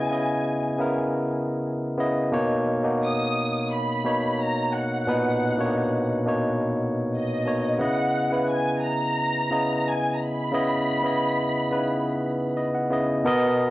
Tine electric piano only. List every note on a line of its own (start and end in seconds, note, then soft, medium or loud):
0.00 0.10 C#3 medium
0.00 0.10 B3 medium
0.00 0.11 E4 medium
0.00 0.13 D#5 loud
0.10 0.65 C#3 medium
0.10 0.65 B3 medium
0.10 0.66 E4 medium
0.10 0.66 D#5 medium
0.78 1.74 C#3 medium
0.78 1.74 B3 medium
0.78 1.75 E4 medium
0.78 1.76 A#4 medium
1.98 2.26 C#3 medium
1.98 2.26 B3 medium
1.98 2.27 E4 medium
1.98 2.27 D#5 medium
2.32 2.74 B2 loud
2.32 2.74 A#3 loud
2.32 2.74 D#4 medium
2.32 2.75 C#5 loud
2.83 3.79 B2 medium
2.83 3.79 A#3 medium
2.83 3.80 D#4 medium
2.83 3.80 F#4 medium
4.04 4.86 B2 medium
4.04 4.86 A#3 medium
4.04 4.86 D#4 medium
4.04 4.87 C#5 medium
5.07 5.48 A#2 medium
5.07 5.48 B2 medium
5.07 5.49 D#4 medium
5.07 5.49 B4 loud
5.58 6.12 B2 medium
5.58 6.13 A#3 medium
5.58 5.65 D4 medium
5.58 6.14 C#5 medium
5.66 6.16 D#4 medium
6.25 7.21 B2 medium
6.25 7.21 A#3 medium
6.25 7.22 D#4 medium
6.25 7.22 C#5 medium
7.45 7.73 B2 medium
7.45 7.73 A#3 medium
7.45 7.74 D#4 medium
7.45 7.74 C#5 medium
7.78 8.20 C#3 medium
7.78 8.20 B3 medium
7.78 8.21 E4 medium
7.78 8.21 D#5 medium
8.30 9.26 C#3 medium
8.30 9.26 B3 medium
8.30 9.27 E4 medium
8.30 9.27 B4 medium
9.50 10.32 C#3 medium
9.50 10.32 B3 medium
9.50 10.32 E4 medium
9.50 10.33 D#5 medium
10.52 10.93 C#3 medium
10.52 10.94 B3 medium
10.52 10.94 E4 medium
10.52 10.94 D#5 medium
11.03 11.57 C#3 medium
11.03 11.58 B3 medium
11.03 11.58 E4 medium
11.03 11.59 D#5 medium
11.70 12.66 C#3 medium
11.70 12.66 B3 medium
11.70 11.79 D#4 soft
11.70 12.67 B4 medium
11.78 12.70 E4 medium
12.57 12.73 D#5 medium
12.75 13.22 F#5 medium
12.90 13.18 C#3 medium
12.90 13.18 B3 medium
12.90 13.19 E4 medium
12.90 13.19 D#5 medium
13.24 13.65 B2 loud
13.24 13.66 B3 loud
13.24 13.66 A#4 loud
13.24 13.67 D#5 loud